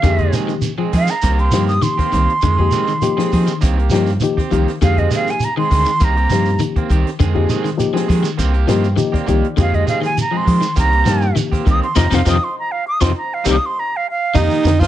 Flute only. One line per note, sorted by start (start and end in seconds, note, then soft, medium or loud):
0.00 0.34 F5 medium
0.97 1.12 F5 loud
1.10 1.41 A#5 medium
1.40 1.67 C6 medium
1.68 1.84 D#6 medium
1.83 3.58 C6 loud
4.84 5.00 F5 loud
4.99 5.11 D#5 medium
5.15 5.32 F5 medium
5.30 5.46 G#5 medium
5.45 5.57 A#5 medium
5.58 6.06 C6 medium
6.05 6.61 A#5 loud
9.61 9.76 F5 medium
9.75 9.88 D#5 loud
9.89 10.03 F5 medium
10.05 10.18 G#5 medium
10.21 10.39 A#5 medium
10.37 10.78 C6 loud
10.79 11.36 A#5 loud
11.71 11.83 D#6 loud
11.83 11.98 C6 medium
11.96 12.16 A#5 medium
12.14 12.27 F5 medium
12.30 12.46 D#6 medium
12.44 12.56 C6 medium
12.59 12.73 A#5 medium
12.72 12.85 F5 loud
12.88 13.02 D#6 loud
13.01 13.14 C6 medium
13.18 13.35 A#5 medium
13.34 13.46 F5 loud
13.51 13.68 D#6 medium
13.66 13.81 C6 medium
13.80 13.98 A#5 medium
13.97 14.07 F5 medium
14.11 14.37 F5 loud